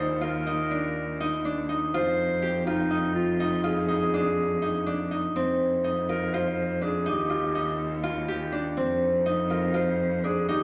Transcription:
Already playing: D#2 D#4 F4 G4
0.00 C5
0.21 F4 A#4
0.47 D#4
0.71 D4
1.21 D#4
1.45 D4
1.69 D#4
1.94 F2 F4 C5
2.42 G4
2.66 D#4 F4
2.91 D#4
3.15 F4
3.40 D#4
3.64 F4 G#4
3.88 D#4
4.14 D4
4.62 D#4
4.86 D4
5.11 D#4
5.36 F2 C4
5.84 D#4
6.09 F4 A#4
6.34 F4 C5
6.81 D4 G#4
7.06 D#2 D#4 G4
7.30 F4
7.55 D#4
8.03 F4
8.28 G4
8.52 D4
8.77 F2 C4
9.26 D#4
9.50 F4 A#4
9.74 F4 C5
10.24 D4 G#4
10.49 D#2 D#4 G4

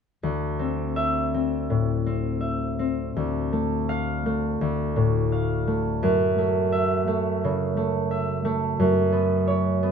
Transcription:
0.23 D2
0.59 C4
0.96 E5
1.34 C4
1.70 A2
2.06 C4
2.41 E5
2.79 C4
3.16 D2
3.53 A3
3.89 F5
4.26 A3
4.61 D2
4.96 A2
5.32 F5
5.67 A3
6.03 F#2
6.38 A3
6.72 E5
7.07 A3
7.44 C#3
7.77 A3
8.11 E5
8.45 A3
8.80 F#2
9.12 B3
9.47 C#5
9.83 B3

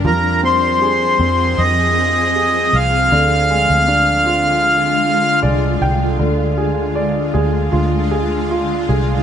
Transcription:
0.04 F2 F3 C4 G#4 A#4
0.43 C4 C5
0.82 G#4
1.19 F2 C4
1.58 F2 D#5
2.36 G#4
2.73 C2 F5
3.12 D2 D3 G#3 F4
3.50 G#3
3.70 D2
3.88 D4
4.26 F4
5.42 C2 G#3 D5
5.81 C2 G5
6.19 D2 D3 G#3 F4
6.58 G#4
6.96 D5
7.34 D2 G#4
7.72 D2 F4
8.11 G#4
8.51 F4
8.89 C2 G#4

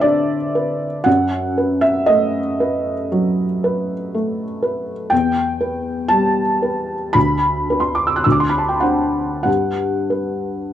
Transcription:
Already playing: D3 B4 C5 E5
0.00 D4 D5
0.55 B4
1.04 F#2 F#5
1.58 B4
1.81 E5
2.06 A3 D#5
2.60 B4
3.12 F#3
3.64 B4
4.15 A3
4.63 B4
5.10 E2 G5
5.61 B4
6.08 G3 A5
6.62 B4
7.13 D2 B5
7.70 D4 B4
7.80 C6
7.95 D6
8.07 E6
8.16 F#6
8.24 D2 E6
8.32 D6
8.40 C6
8.49 B5
8.58 A5
8.69 G5
8.80 D4 C5 F#5
9.43 G2 F#5
10.10 B4

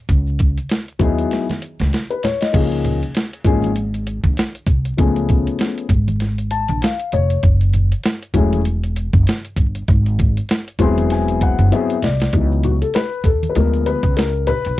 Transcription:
0.08 C#2, kick, closed hi-hat, maracas
0.27 maracas
0.39 kick, closed hi-hat, maracas
0.58 closed hi-hat, maracas
0.69 snare, closed hi-hat, maracas
0.88 closed hi-hat, maracas
0.99 D#2 F#3 B3 D#4 E4 G#4, kick, closed hi-hat, low conga, maracas
1.18 closed hi-hat, maracas
1.31 snare, closed hi-hat, maracas
1.49 snare, closed hi-hat, high conga, maracas
1.62 closed hi-hat, maracas
1.79 C#2, snare, closed hi-hat, high conga, maracas
1.93 snare, closed hi-hat, maracas
2.10 B4, closed hi-hat, maracas
2.23 C#5, snare, closed hi-hat, low conga, maracas
2.41 D#5, snare, closed hi-hat, maracas
2.52 C#2 F3 A#3 C#4 D#4 G#4, kick, closed hi-hat, crash, maracas
2.72 closed hi-hat, maracas
2.84 closed hi-hat, high conga, low conga, maracas
3.02 closed hi-hat, maracas
3.15 snare, closed hi-hat, maracas
3.33 closed hi-hat, maracas
3.44 G#1 F3 A#3 C#4 D#4 G#4, kick, closed hi-hat, low conga, maracas
3.62 closed hi-hat, high conga, maracas
3.76 closed hi-hat, maracas
3.94 closed hi-hat, maracas
4.07 closed hi-hat, maracas
4.24 A#1, kick, closed hi-hat, high conga, maracas
4.37 snare, closed hi-hat, maracas
4.55 closed hi-hat, maracas
4.67 C2, kick, closed hi-hat, low conga, maracas
4.85 closed hi-hat, maracas
4.97 C#2 F3 A3 B3 C#4 G#4, kick, closed hi-hat, maracas
5.16 closed hi-hat, maracas
5.29 kick, closed hi-hat, high conga, low conga, maracas
5.47 closed hi-hat, maracas
5.59 snare, closed hi-hat, maracas
5.78 closed hi-hat, maracas
5.89 G#1, kick, closed hi-hat, low conga, maracas
6.08 closed hi-hat, high conga, maracas
6.20 snare, closed hi-hat, maracas
6.38 closed hi-hat, maracas
6.51 A5, closed hi-hat, maracas
6.69 A#1, closed hi-hat, high conga, maracas
6.82 F5, snare, closed hi-hat, maracas
7.00 closed hi-hat, maracas
7.12 F1 C#5, closed hi-hat, low conga, maracas
7.30 closed hi-hat, maracas
7.43 F#1, kick, closed hi-hat, maracas
7.61 closed hi-hat, maracas
7.74 closed hi-hat, high conga, low conga, maracas
7.92 closed hi-hat, maracas
8.04 snare, closed hi-hat, maracas
8.22 closed hi-hat, maracas
8.34 E1 F#3 A3 C#4 E4 G#4, kick, closed hi-hat, low conga, maracas
8.53 closed hi-hat, high conga, maracas
8.65 closed hi-hat, maracas
8.83 closed hi-hat, maracas
8.96 closed hi-hat, maracas
9.13 F#1, kick, closed hi-hat, high conga, maracas
9.27 snare, closed hi-hat, maracas
9.45 closed hi-hat, maracas
9.56 G1, kick, closed hi-hat, low conga, maracas
9.75 closed hi-hat, maracas
9.88 G#1, kick, closed hi-hat, maracas
10.06 closed hi-hat, maracas
10.19 kick, closed hi-hat, high conga, low conga, maracas
10.37 closed hi-hat, maracas
10.49 snare, closed hi-hat, maracas
10.67 closed hi-hat, maracas
10.79 E1 F#3 B3 C4 E4 G#4 C6, kick, closed hi-hat, low conga, maracas
10.97 closed hi-hat, high conga, maracas
11.10 G#5, snare, closed hi-hat, maracas
11.28 closed hi-hat, maracas
11.41 F#5, kick, closed hi-hat, maracas
11.59 F#1, closed hi-hat, high conga, maracas
11.71 F#3 B3 C4 E4 G#4 E5, closed hi-hat, maracas
11.90 closed hi-hat, maracas
12.02 C2 D5, snare, closed hi-hat, low conga, maracas
12.20 snare, closed hi-hat, maracas
12.33 C#2 E3 F#3 B3 D#4, kick, closed hi-hat, maracas
12.52 maracas
12.64 F#4, closed hi-hat, low conga, maracas
12.82 A4, closed hi-hat, maracas
12.94 B4, snare, closed hi-hat, maracas
13.13 maracas
13.24 D#2 A4, kick, closed hi-hat, low conga, maracas
13.43 closed hi-hat, high conga, maracas
13.50 B4
13.55 D2 F3 G#3 B3 A#4, closed hi-hat, high conga, maracas
13.74 closed hi-hat, maracas
13.86 B4, closed hi-hat, maracas
14.03 C#2, kick, closed hi-hat, high conga, maracas
14.17 A#4, snare, closed hi-hat, maracas
14.35 maracas
14.47 B4, closed hi-hat, low conga, maracas
14.65 B1, closed hi-hat, maracas

